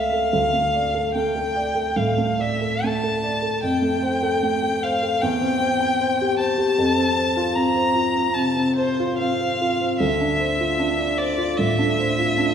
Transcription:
Already playing: C#2 A3 A4 E5 F5
0.13 A4
0.33 D2
0.53 A3
0.74 D5
0.95 A4
1.15 A3 G5
1.36 A4
1.55 D5
1.75 A4
1.96 A2 F5
2.18 A3
2.40 D5 E5
2.61 A4
2.84 A3 A5
3.04 A4
3.23 D5
3.42 A4
3.63 F2 G5
3.82 A3
4.02 C5
4.23 A4
4.43 A3
4.63 A4
4.83 C5 F5
5.03 A4
5.22 E2 G5
5.41 C4
5.61 C5
5.80 G5
6.01 C5
6.21 G4
6.39 C5 A5
6.58 G4
6.78 F2
6.97 C4
7.17 C5
7.37 F4
7.56 C4 A#5
7.76 C5
7.95 F4
8.16 C4
8.34 C3 A5
8.56 C4
8.76 C5
9.00 F4
9.18 C4 F5
9.41 C5
9.62 F4
9.81 C4
9.99 D2 E5
10.21 D4
10.40 C5
10.61 F4
10.79 D4
10.98 D5
11.18 C5 D5
11.38 F4
11.58 A2 E5
11.79 D4
11.99 C5
12.19 F4
12.38 D4

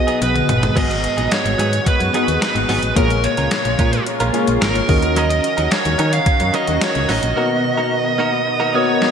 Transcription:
Already playing: B2 B3 F#4 G#4 D#5
0.07 F#3 B3 D#4 G#4, closed hi-hat
0.21 B1 B4, muted clean electric guitar stroke, closed hi-hat, high tom
0.34 muted clean electric guitar stroke, closed hi-hat, mid tom
0.49 G1, closed hi-hat, mid tom
0.62 muted clean electric guitar stroke, closed hi-hat, floor tom
0.76 G#1 G#2 D#3 F#3 G#3 B3 D#4 F#4 G#4 D#5, kick, closed hi-hat, crash
0.90 muted clean electric guitar stroke, closed hi-hat
1.03 muted clean electric guitar stroke, closed hi-hat
1.17 A#1 F#3 B3 D#4 G#4, closed hi-hat
1.32 C#5, snare, closed hi-hat
1.45 G#1, muted clean electric guitar stroke, closed hi-hat
1.58 G#2 F#3 B3 D#4 G#4, closed hi-hat
1.73 muted clean electric guitar stroke, closed hi-hat
1.86 B4, muted clean electric guitar stroke, kick, closed hi-hat
2.00 F#2, muted clean electric guitar stroke, closed hi-hat
2.13 F#3 B3 D#4 F#4 G#4 D#5, closed hi-hat
2.28 D#2, muted clean electric guitar stroke, closed hi-hat
2.42 B4, snare, closed hi-hat
2.55 G#1, muted clean electric guitar stroke, closed hi-hat
2.69 G#1 F#3 B3 D#4 G#4, open hi-hat
2.82 A1, muted clean electric guitar stroke, closed hi-hat
2.95 A#1 A#2 C#3 G#3 A#3 C#4 F4 G#4 A#4 C#5, kick, closed hi-hat
3.10 muted clean electric guitar stroke, closed hi-hat
3.24 C#5, muted clean electric guitar stroke, closed hi-hat
3.37 C#2 G#3 C#4 F4 A#4, closed hi-hat
3.51 snare, closed hi-hat
3.65 A#1, muted clean electric guitar stroke, closed hi-hat
3.79 A#2 G#3 C#4 F4 A#4, kick, closed hi-hat
3.93 muted clean electric guitar stroke, closed hi-hat
4.07 muted clean electric guitar stroke, closed hi-hat
4.20 A#1 G#3 C#4 F4 A#4, closed hi-hat
4.33 G#3 A#3 C#4 F4 G#4 A#4 C#5, closed hi-hat
4.47 A#1, muted clean electric guitar stroke, closed hi-hat
4.62 G#1 A#4, muted clean electric guitar stroke, snare, closed hi-hat
4.75 muted clean electric guitar stroke, closed hi-hat
4.88 D#2 D#3 C#4 F#4 A#4 D#5, kick, open hi-hat
5.03 muted clean electric guitar stroke, closed hi-hat
5.16 F#3 C#4 D#4 A#4 D#5, closed hi-hat
5.30 muted clean electric guitar stroke, closed hi-hat
5.44 muted clean electric guitar stroke, closed hi-hat
5.57 D#2 F#3 C#4 D#4 A#4, closed hi-hat
5.71 C#5, snare, closed hi-hat
5.85 D#2, muted clean electric guitar stroke, closed hi-hat
5.98 D#3 F#3 C#4 D#4 A#4, closed hi-hat
6.12 F5, muted clean electric guitar stroke, closed hi-hat
6.26 muted clean electric guitar stroke, kick, closed hi-hat
6.40 F#2, muted clean electric guitar stroke, closed hi-hat
6.53 F#3 C#4 D#4 F#4 A#4 D#5, closed hi-hat
6.67 D#2, muted clean electric guitar stroke, closed hi-hat
6.81 C#5, snare, closed hi-hat
6.95 C#2, muted clean electric guitar stroke, closed hi-hat
7.09 A1 F#3 C#4 D#4 A#4 D#5, open hi-hat
7.23 A#1, muted clean electric guitar stroke, closed hi-hat
7.36 B2 A#3 B3 D#4 F#4 A#4 D#5
7.50 muted clean electric guitar stroke
7.64 muted clean electric guitar stroke
7.77 A#3 D#4 F#4 A#4
8.05 muted clean electric guitar stroke
8.18 A#3 D#4 F#4 A#4
8.32 muted clean electric guitar stroke
8.46 muted clean electric guitar stroke
8.60 A#3 D#4 F#4 A#4
8.74 A#3 B3 D#4 F#4 A#4 C#5 D#5
8.88 muted clean electric guitar stroke
9.02 muted clean electric guitar stroke, snare

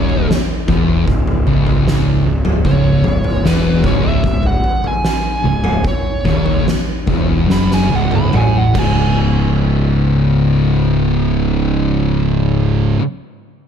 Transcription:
Already playing: D#1 D#2 C#5
0.09 floor tom
0.31 snare
0.68 E1 E2, kick, floor tom
1.07 C#1 C#2, kick, floor tom
1.27 floor tom
1.47 C#1 C#2, floor tom
1.67 floor tom
1.88 snare
2.26 C#1 C#2
2.45 mid tom
2.65 C#1 C#2 C#5, kick, floor tom
3.04 C#1 C#2, floor tom, mid tom
3.24 floor tom
3.45 E1 E2 B4, snare
3.84 C#1 C#2 C#5, kick, floor tom
4.08 E5
4.24 C#1 C#2, kick, floor tom
4.43 F#5, floor tom
4.64 floor tom
4.84 G#5, floor tom
5.05 snare
5.43 C#1 C#2
5.64 mid tom
5.84 C#5, kick, floor tom
6.25 D#1 D#2, kick, floor tom, mid tom
6.46 floor tom
6.68 snare
7.07 E1 E2, kick, floor tom
7.47 F#1 F#2, snare
7.52 B5
7.71 G#5, snare
7.90 C#1 C#2
7.95 F#5
8.11 high tom
8.16 B5
8.33 A1 A2 G#5, mid tom
8.58 F#5
8.74 C#1 C#2 G#2, kick, crash
8.78 C#3 G#5

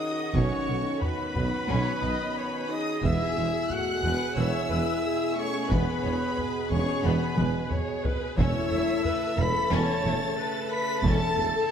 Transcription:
Already playing: D#3 C#4 D#4 F#4 G#4 D#5 D#6
0.34 B1 B2 C#4 F#4 C#5 C#6, taiko
0.68 B1 B2 B3 A4
1.01 B3 B4 B5, taiko low-mid
1.35 B1 B2 B3, taiko low-mid
1.69 B1 B2 C#4 C#5
2.02 B1 B2 B3 D#5
2.36 C#5
2.68 D#4 G#4 D#5 D#6
3.03 E1 E2 B2 B3 E4 G#4 E5 E6, taiko
3.37 E1 E2 G#3
3.69 A3 F#4 F#5 F#6, taiko low-mid
4.03 E1 E2 G#3 B4, taiko low-mid
4.36 E1 E2 B3 E4 C#5 E5 E6
4.70 E1 E2 G#3 B4
5.03 G#4
5.36 A3 C#4 C#5 C#6
5.70 E1 E2 B3 B4 B5, taiko
6.04 E1 E2 G#3 C#5
6.36 B4, taiko low-mid
6.70 E1 E2 G#3 C#4 G#4 C#5 C#6, taiko low-mid
7.03 E1 E2 B3 G#4 B4 B5
7.37 E1 E2 G#3 B4, taiko high
7.71 C#5, taiko low-mid
8.05 B4, taiko low
8.37 E1 E2 C#3 A3 C#4 E4 A4 C#5 E5 E6, taiko
8.70 E1 E2 A3
9.05 B4, taiko low-mid
9.37 E1 E2 A3 A4 B4 B5 B6, taiko low-mid
9.71 E1 E2 C#4 A4 C#5 A5 A6
10.05 E1 E2 A3
10.38 B4
10.70 B4 B5 B6
11.02 E1 E2 C#4 A4 A5 A6, taiko
11.37 E1 E2 A3
11.68 G#6

